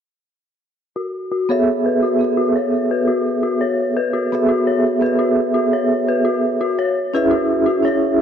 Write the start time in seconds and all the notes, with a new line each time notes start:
0.96 F#4
1.32 F#4
1.49 B3 G#4 A4 C#5 E5
1.86 B4
2.02 F#4
2.19 B3 G#4 A4
2.24 E5
2.37 F#4
2.56 C#5
2.91 B4
3.07 F#4
3.43 F#4
3.61 C#5
3.97 B4
4.13 F#4
4.32 B3 G#4 A4 E5
4.49 F#4
4.67 C#5
5.01 B3 G#4 A4 B4
5.06 E5
5.19 F#4
5.54 F#4
5.73 C#5
6.08 B4
6.25 F#4
6.61 F#4
6.79 C#5
7.14 C#4 E4 G#4 B4 E5
7.31 F#4
7.66 F#4
7.83 C#4 E4 G#4 C#5
7.88 E5